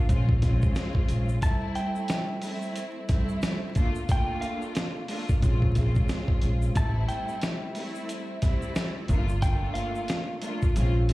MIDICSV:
0, 0, Header, 1, 5, 480
1, 0, Start_track
1, 0, Tempo, 666667
1, 1025, Time_signature, 4, 2, 24, 8
1, 8014, End_track
2, 0, Start_track
2, 0, Title_t, "Clean electric guitar"
2, 0, Program_c, 0, 27
2, 0, Note_on_c, 0, 77, 88
2, 172, Note_off_c, 0, 77, 0
2, 1028, Note_on_c, 0, 81, 93
2, 1243, Note_off_c, 0, 81, 0
2, 1264, Note_on_c, 0, 79, 88
2, 2096, Note_off_c, 0, 79, 0
2, 2963, Note_on_c, 0, 79, 103
2, 3171, Note_off_c, 0, 79, 0
2, 3177, Note_on_c, 0, 77, 89
2, 4013, Note_off_c, 0, 77, 0
2, 4874, Note_on_c, 0, 81, 87
2, 5086, Note_off_c, 0, 81, 0
2, 5101, Note_on_c, 0, 79, 85
2, 5935, Note_off_c, 0, 79, 0
2, 6785, Note_on_c, 0, 79, 99
2, 7001, Note_off_c, 0, 79, 0
2, 7012, Note_on_c, 0, 77, 90
2, 7850, Note_off_c, 0, 77, 0
2, 8014, End_track
3, 0, Start_track
3, 0, Title_t, "String section"
3, 0, Program_c, 1, 48
3, 57, Note_on_c, 1, 56, 98
3, 61, Note_on_c, 1, 60, 94
3, 67, Note_on_c, 1, 61, 90
3, 72, Note_on_c, 1, 65, 108
3, 285, Note_off_c, 1, 56, 0
3, 287, Note_off_c, 1, 60, 0
3, 290, Note_off_c, 1, 61, 0
3, 293, Note_off_c, 1, 65, 0
3, 305, Note_on_c, 1, 56, 110
3, 310, Note_on_c, 1, 60, 91
3, 315, Note_on_c, 1, 61, 90
3, 321, Note_on_c, 1, 65, 106
3, 977, Note_off_c, 1, 56, 0
3, 980, Note_off_c, 1, 60, 0
3, 983, Note_off_c, 1, 61, 0
3, 985, Note_off_c, 1, 65, 0
3, 1021, Note_on_c, 1, 55, 103
3, 1027, Note_on_c, 1, 57, 94
3, 1032, Note_on_c, 1, 60, 89
3, 1038, Note_on_c, 1, 64, 112
3, 1696, Note_off_c, 1, 55, 0
3, 1698, Note_off_c, 1, 57, 0
3, 1701, Note_off_c, 1, 60, 0
3, 1704, Note_off_c, 1, 64, 0
3, 1740, Note_on_c, 1, 55, 88
3, 1744, Note_on_c, 1, 57, 89
3, 1750, Note_on_c, 1, 60, 89
3, 1756, Note_on_c, 1, 64, 104
3, 2191, Note_off_c, 1, 55, 0
3, 2193, Note_off_c, 1, 57, 0
3, 2196, Note_off_c, 1, 60, 0
3, 2199, Note_off_c, 1, 64, 0
3, 2217, Note_on_c, 1, 55, 100
3, 2221, Note_on_c, 1, 57, 94
3, 2227, Note_on_c, 1, 60, 102
3, 2232, Note_on_c, 1, 64, 108
3, 2694, Note_off_c, 1, 57, 0
3, 2701, Note_off_c, 1, 55, 0
3, 2703, Note_on_c, 1, 57, 101
3, 2706, Note_off_c, 1, 60, 0
3, 2707, Note_on_c, 1, 58, 87
3, 2709, Note_off_c, 1, 64, 0
3, 2712, Note_on_c, 1, 62, 89
3, 2718, Note_on_c, 1, 65, 115
3, 2928, Note_off_c, 1, 57, 0
3, 2930, Note_off_c, 1, 58, 0
3, 2933, Note_off_c, 1, 62, 0
3, 2936, Note_off_c, 1, 65, 0
3, 2936, Note_on_c, 1, 57, 105
3, 2941, Note_on_c, 1, 58, 95
3, 2946, Note_on_c, 1, 62, 86
3, 2951, Note_on_c, 1, 65, 111
3, 3613, Note_off_c, 1, 57, 0
3, 3615, Note_off_c, 1, 58, 0
3, 3618, Note_off_c, 1, 62, 0
3, 3621, Note_off_c, 1, 65, 0
3, 3656, Note_on_c, 1, 57, 96
3, 3661, Note_on_c, 1, 58, 85
3, 3667, Note_on_c, 1, 62, 95
3, 3672, Note_on_c, 1, 65, 100
3, 3895, Note_on_c, 1, 56, 99
3, 3900, Note_off_c, 1, 57, 0
3, 3900, Note_on_c, 1, 60, 93
3, 3902, Note_off_c, 1, 65, 0
3, 3903, Note_off_c, 1, 58, 0
3, 3906, Note_off_c, 1, 62, 0
3, 3906, Note_on_c, 1, 61, 89
3, 3911, Note_on_c, 1, 65, 113
3, 4124, Note_off_c, 1, 56, 0
3, 4126, Note_off_c, 1, 60, 0
3, 4129, Note_off_c, 1, 61, 0
3, 4132, Note_off_c, 1, 65, 0
3, 4142, Note_on_c, 1, 56, 109
3, 4148, Note_on_c, 1, 60, 93
3, 4153, Note_on_c, 1, 61, 92
3, 4158, Note_on_c, 1, 65, 105
3, 4816, Note_off_c, 1, 56, 0
3, 4819, Note_off_c, 1, 60, 0
3, 4821, Note_off_c, 1, 61, 0
3, 4824, Note_off_c, 1, 65, 0
3, 4862, Note_on_c, 1, 55, 99
3, 4868, Note_on_c, 1, 57, 96
3, 4873, Note_on_c, 1, 60, 93
3, 4878, Note_on_c, 1, 64, 116
3, 5536, Note_off_c, 1, 55, 0
3, 5539, Note_off_c, 1, 57, 0
3, 5541, Note_off_c, 1, 60, 0
3, 5544, Note_off_c, 1, 64, 0
3, 5578, Note_on_c, 1, 55, 90
3, 5583, Note_on_c, 1, 57, 89
3, 5588, Note_on_c, 1, 60, 88
3, 5594, Note_on_c, 1, 64, 101
3, 6030, Note_off_c, 1, 55, 0
3, 6032, Note_off_c, 1, 57, 0
3, 6035, Note_off_c, 1, 60, 0
3, 6038, Note_off_c, 1, 64, 0
3, 6055, Note_on_c, 1, 55, 103
3, 6061, Note_on_c, 1, 57, 94
3, 6066, Note_on_c, 1, 60, 104
3, 6071, Note_on_c, 1, 64, 107
3, 6533, Note_off_c, 1, 57, 0
3, 6540, Note_off_c, 1, 55, 0
3, 6541, Note_on_c, 1, 57, 99
3, 6545, Note_off_c, 1, 60, 0
3, 6546, Note_on_c, 1, 58, 87
3, 6548, Note_off_c, 1, 64, 0
3, 6551, Note_on_c, 1, 62, 89
3, 6556, Note_on_c, 1, 65, 119
3, 6767, Note_off_c, 1, 57, 0
3, 6770, Note_off_c, 1, 58, 0
3, 6772, Note_off_c, 1, 62, 0
3, 6774, Note_on_c, 1, 57, 100
3, 6775, Note_off_c, 1, 65, 0
3, 6779, Note_on_c, 1, 58, 98
3, 6784, Note_on_c, 1, 62, 90
3, 6790, Note_on_c, 1, 65, 106
3, 7452, Note_off_c, 1, 57, 0
3, 7454, Note_off_c, 1, 58, 0
3, 7457, Note_off_c, 1, 62, 0
3, 7460, Note_off_c, 1, 65, 0
3, 7496, Note_on_c, 1, 57, 96
3, 7501, Note_on_c, 1, 58, 83
3, 7506, Note_on_c, 1, 62, 95
3, 7511, Note_on_c, 1, 65, 105
3, 7736, Note_on_c, 1, 56, 98
3, 7740, Note_off_c, 1, 57, 0
3, 7741, Note_on_c, 1, 60, 94
3, 7743, Note_off_c, 1, 58, 0
3, 7743, Note_off_c, 1, 65, 0
3, 7746, Note_off_c, 1, 62, 0
3, 7746, Note_on_c, 1, 61, 89
3, 7752, Note_on_c, 1, 65, 109
3, 7964, Note_off_c, 1, 56, 0
3, 7967, Note_off_c, 1, 60, 0
3, 7970, Note_off_c, 1, 61, 0
3, 7972, Note_off_c, 1, 65, 0
3, 7985, Note_on_c, 1, 56, 106
3, 7989, Note_on_c, 1, 60, 91
3, 8014, Note_off_c, 1, 56, 0
3, 8014, Note_off_c, 1, 60, 0
3, 8014, End_track
4, 0, Start_track
4, 0, Title_t, "Upright bass"
4, 0, Program_c, 2, 32
4, 68, Note_on_c, 2, 34, 100
4, 468, Note_off_c, 2, 34, 0
4, 789, Note_on_c, 2, 34, 85
4, 988, Note_off_c, 2, 34, 0
4, 3908, Note_on_c, 2, 34, 107
4, 4307, Note_off_c, 2, 34, 0
4, 4630, Note_on_c, 2, 34, 90
4, 4828, Note_off_c, 2, 34, 0
4, 4868, Note_on_c, 2, 33, 119
4, 5067, Note_off_c, 2, 33, 0
4, 6549, Note_on_c, 2, 31, 104
4, 6948, Note_off_c, 2, 31, 0
4, 7750, Note_on_c, 2, 34, 105
4, 8014, Note_off_c, 2, 34, 0
4, 8014, End_track
5, 0, Start_track
5, 0, Title_t, "Drums"
5, 65, Note_on_c, 9, 36, 101
5, 66, Note_on_c, 9, 42, 89
5, 69, Note_on_c, 9, 82, 77
5, 137, Note_off_c, 9, 36, 0
5, 138, Note_off_c, 9, 42, 0
5, 141, Note_off_c, 9, 82, 0
5, 207, Note_on_c, 9, 36, 98
5, 279, Note_off_c, 9, 36, 0
5, 303, Note_on_c, 9, 42, 89
5, 305, Note_on_c, 9, 38, 38
5, 305, Note_on_c, 9, 82, 49
5, 308, Note_on_c, 9, 36, 93
5, 375, Note_off_c, 9, 42, 0
5, 377, Note_off_c, 9, 38, 0
5, 377, Note_off_c, 9, 82, 0
5, 380, Note_off_c, 9, 36, 0
5, 446, Note_on_c, 9, 82, 48
5, 454, Note_on_c, 9, 36, 104
5, 518, Note_off_c, 9, 82, 0
5, 526, Note_off_c, 9, 36, 0
5, 542, Note_on_c, 9, 82, 71
5, 547, Note_on_c, 9, 42, 97
5, 548, Note_on_c, 9, 38, 111
5, 614, Note_off_c, 9, 82, 0
5, 619, Note_off_c, 9, 42, 0
5, 620, Note_off_c, 9, 38, 0
5, 683, Note_on_c, 9, 36, 106
5, 755, Note_off_c, 9, 36, 0
5, 781, Note_on_c, 9, 42, 75
5, 787, Note_on_c, 9, 82, 50
5, 853, Note_off_c, 9, 42, 0
5, 859, Note_off_c, 9, 82, 0
5, 927, Note_on_c, 9, 82, 64
5, 999, Note_off_c, 9, 82, 0
5, 1023, Note_on_c, 9, 42, 104
5, 1025, Note_on_c, 9, 36, 120
5, 1025, Note_on_c, 9, 82, 96
5, 1095, Note_off_c, 9, 42, 0
5, 1097, Note_off_c, 9, 36, 0
5, 1097, Note_off_c, 9, 82, 0
5, 1262, Note_on_c, 9, 42, 76
5, 1265, Note_on_c, 9, 82, 50
5, 1334, Note_off_c, 9, 42, 0
5, 1337, Note_off_c, 9, 82, 0
5, 1406, Note_on_c, 9, 82, 45
5, 1478, Note_off_c, 9, 82, 0
5, 1498, Note_on_c, 9, 42, 92
5, 1507, Note_on_c, 9, 82, 70
5, 1510, Note_on_c, 9, 38, 113
5, 1570, Note_off_c, 9, 42, 0
5, 1579, Note_off_c, 9, 82, 0
5, 1582, Note_off_c, 9, 38, 0
5, 1739, Note_on_c, 9, 46, 60
5, 1746, Note_on_c, 9, 82, 51
5, 1811, Note_off_c, 9, 46, 0
5, 1818, Note_off_c, 9, 82, 0
5, 1886, Note_on_c, 9, 82, 54
5, 1958, Note_off_c, 9, 82, 0
5, 1984, Note_on_c, 9, 42, 88
5, 1988, Note_on_c, 9, 82, 76
5, 2056, Note_off_c, 9, 42, 0
5, 2060, Note_off_c, 9, 82, 0
5, 2223, Note_on_c, 9, 42, 87
5, 2225, Note_on_c, 9, 38, 38
5, 2225, Note_on_c, 9, 82, 52
5, 2227, Note_on_c, 9, 36, 94
5, 2295, Note_off_c, 9, 42, 0
5, 2297, Note_off_c, 9, 38, 0
5, 2297, Note_off_c, 9, 82, 0
5, 2299, Note_off_c, 9, 36, 0
5, 2366, Note_on_c, 9, 82, 48
5, 2438, Note_off_c, 9, 82, 0
5, 2463, Note_on_c, 9, 82, 72
5, 2469, Note_on_c, 9, 38, 115
5, 2469, Note_on_c, 9, 42, 93
5, 2535, Note_off_c, 9, 82, 0
5, 2541, Note_off_c, 9, 38, 0
5, 2541, Note_off_c, 9, 42, 0
5, 2701, Note_on_c, 9, 42, 74
5, 2707, Note_on_c, 9, 36, 94
5, 2707, Note_on_c, 9, 82, 50
5, 2773, Note_off_c, 9, 42, 0
5, 2779, Note_off_c, 9, 36, 0
5, 2779, Note_off_c, 9, 82, 0
5, 2845, Note_on_c, 9, 82, 62
5, 2917, Note_off_c, 9, 82, 0
5, 2944, Note_on_c, 9, 42, 103
5, 2945, Note_on_c, 9, 36, 118
5, 2945, Note_on_c, 9, 82, 95
5, 3016, Note_off_c, 9, 42, 0
5, 3017, Note_off_c, 9, 36, 0
5, 3017, Note_off_c, 9, 82, 0
5, 3183, Note_on_c, 9, 42, 75
5, 3185, Note_on_c, 9, 82, 52
5, 3255, Note_off_c, 9, 42, 0
5, 3257, Note_off_c, 9, 82, 0
5, 3325, Note_on_c, 9, 82, 48
5, 3397, Note_off_c, 9, 82, 0
5, 3420, Note_on_c, 9, 42, 94
5, 3426, Note_on_c, 9, 82, 69
5, 3432, Note_on_c, 9, 38, 114
5, 3492, Note_off_c, 9, 42, 0
5, 3498, Note_off_c, 9, 82, 0
5, 3504, Note_off_c, 9, 38, 0
5, 3660, Note_on_c, 9, 46, 59
5, 3665, Note_on_c, 9, 82, 52
5, 3732, Note_off_c, 9, 46, 0
5, 3737, Note_off_c, 9, 82, 0
5, 3806, Note_on_c, 9, 82, 54
5, 3811, Note_on_c, 9, 36, 95
5, 3878, Note_off_c, 9, 82, 0
5, 3883, Note_off_c, 9, 36, 0
5, 3905, Note_on_c, 9, 42, 91
5, 3906, Note_on_c, 9, 36, 99
5, 3909, Note_on_c, 9, 82, 76
5, 3977, Note_off_c, 9, 42, 0
5, 3978, Note_off_c, 9, 36, 0
5, 3981, Note_off_c, 9, 82, 0
5, 4047, Note_on_c, 9, 36, 96
5, 4119, Note_off_c, 9, 36, 0
5, 4142, Note_on_c, 9, 42, 93
5, 4143, Note_on_c, 9, 82, 50
5, 4144, Note_on_c, 9, 38, 37
5, 4148, Note_on_c, 9, 36, 94
5, 4214, Note_off_c, 9, 42, 0
5, 4215, Note_off_c, 9, 82, 0
5, 4216, Note_off_c, 9, 38, 0
5, 4220, Note_off_c, 9, 36, 0
5, 4285, Note_on_c, 9, 82, 49
5, 4294, Note_on_c, 9, 36, 103
5, 4357, Note_off_c, 9, 82, 0
5, 4366, Note_off_c, 9, 36, 0
5, 4381, Note_on_c, 9, 82, 70
5, 4387, Note_on_c, 9, 42, 94
5, 4388, Note_on_c, 9, 38, 116
5, 4453, Note_off_c, 9, 82, 0
5, 4459, Note_off_c, 9, 42, 0
5, 4460, Note_off_c, 9, 38, 0
5, 4523, Note_on_c, 9, 36, 109
5, 4595, Note_off_c, 9, 36, 0
5, 4619, Note_on_c, 9, 42, 76
5, 4626, Note_on_c, 9, 82, 49
5, 4691, Note_off_c, 9, 42, 0
5, 4698, Note_off_c, 9, 82, 0
5, 4767, Note_on_c, 9, 82, 62
5, 4839, Note_off_c, 9, 82, 0
5, 4863, Note_on_c, 9, 42, 103
5, 4865, Note_on_c, 9, 36, 120
5, 4866, Note_on_c, 9, 82, 95
5, 4935, Note_off_c, 9, 42, 0
5, 4937, Note_off_c, 9, 36, 0
5, 4938, Note_off_c, 9, 82, 0
5, 5102, Note_on_c, 9, 42, 76
5, 5105, Note_on_c, 9, 82, 51
5, 5174, Note_off_c, 9, 42, 0
5, 5177, Note_off_c, 9, 82, 0
5, 5245, Note_on_c, 9, 82, 46
5, 5317, Note_off_c, 9, 82, 0
5, 5339, Note_on_c, 9, 42, 95
5, 5346, Note_on_c, 9, 82, 70
5, 5351, Note_on_c, 9, 38, 113
5, 5411, Note_off_c, 9, 42, 0
5, 5418, Note_off_c, 9, 82, 0
5, 5423, Note_off_c, 9, 38, 0
5, 5580, Note_on_c, 9, 46, 59
5, 5585, Note_on_c, 9, 82, 51
5, 5652, Note_off_c, 9, 46, 0
5, 5657, Note_off_c, 9, 82, 0
5, 5725, Note_on_c, 9, 82, 53
5, 5797, Note_off_c, 9, 82, 0
5, 5825, Note_on_c, 9, 42, 89
5, 5828, Note_on_c, 9, 82, 77
5, 5897, Note_off_c, 9, 42, 0
5, 5900, Note_off_c, 9, 82, 0
5, 6062, Note_on_c, 9, 42, 89
5, 6064, Note_on_c, 9, 38, 38
5, 6064, Note_on_c, 9, 82, 49
5, 6067, Note_on_c, 9, 36, 95
5, 6134, Note_off_c, 9, 42, 0
5, 6136, Note_off_c, 9, 38, 0
5, 6136, Note_off_c, 9, 82, 0
5, 6139, Note_off_c, 9, 36, 0
5, 6207, Note_on_c, 9, 82, 48
5, 6279, Note_off_c, 9, 82, 0
5, 6303, Note_on_c, 9, 82, 73
5, 6307, Note_on_c, 9, 38, 114
5, 6307, Note_on_c, 9, 42, 91
5, 6375, Note_off_c, 9, 82, 0
5, 6379, Note_off_c, 9, 38, 0
5, 6379, Note_off_c, 9, 42, 0
5, 6540, Note_on_c, 9, 42, 72
5, 6546, Note_on_c, 9, 36, 91
5, 6547, Note_on_c, 9, 82, 50
5, 6612, Note_off_c, 9, 42, 0
5, 6618, Note_off_c, 9, 36, 0
5, 6619, Note_off_c, 9, 82, 0
5, 6687, Note_on_c, 9, 82, 63
5, 6759, Note_off_c, 9, 82, 0
5, 6783, Note_on_c, 9, 42, 103
5, 6785, Note_on_c, 9, 36, 118
5, 6786, Note_on_c, 9, 82, 92
5, 6855, Note_off_c, 9, 42, 0
5, 6857, Note_off_c, 9, 36, 0
5, 6858, Note_off_c, 9, 82, 0
5, 7022, Note_on_c, 9, 42, 75
5, 7025, Note_on_c, 9, 82, 51
5, 7094, Note_off_c, 9, 42, 0
5, 7097, Note_off_c, 9, 82, 0
5, 7165, Note_on_c, 9, 82, 47
5, 7237, Note_off_c, 9, 82, 0
5, 7259, Note_on_c, 9, 42, 92
5, 7266, Note_on_c, 9, 82, 71
5, 7271, Note_on_c, 9, 38, 113
5, 7331, Note_off_c, 9, 42, 0
5, 7338, Note_off_c, 9, 82, 0
5, 7343, Note_off_c, 9, 38, 0
5, 7499, Note_on_c, 9, 42, 84
5, 7505, Note_on_c, 9, 82, 51
5, 7571, Note_off_c, 9, 42, 0
5, 7577, Note_off_c, 9, 82, 0
5, 7645, Note_on_c, 9, 82, 53
5, 7651, Note_on_c, 9, 36, 93
5, 7717, Note_off_c, 9, 82, 0
5, 7723, Note_off_c, 9, 36, 0
5, 7746, Note_on_c, 9, 42, 91
5, 7747, Note_on_c, 9, 82, 77
5, 7818, Note_off_c, 9, 42, 0
5, 7819, Note_off_c, 9, 82, 0
5, 7984, Note_on_c, 9, 42, 90
5, 7984, Note_on_c, 9, 82, 49
5, 7986, Note_on_c, 9, 38, 37
5, 8014, Note_off_c, 9, 38, 0
5, 8014, Note_off_c, 9, 42, 0
5, 8014, Note_off_c, 9, 82, 0
5, 8014, End_track
0, 0, End_of_file